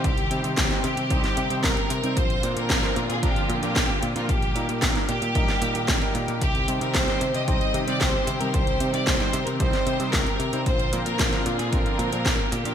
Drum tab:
HH |xxxxxxxxxxxxxxxx|xxxxxxxxxxxxx-xx|xxxxxxxxxxxxxxxx|xxxxxxxxxxxxx-xx|
SD |----oo---o--o---|----oo------o---|----oo---o--o---|----oo------o---|
BD |o---o---o---o---|o---o---o---o---|o---o---o---o---|o---o---o---o---|

HH |xxxxxxxxxxxxxxxx|xxxxxxxxxxxxx-xx|
SD |----oo---o--o---|----oo------o---|
BD |o---o---o---o---|o---o---o---o---|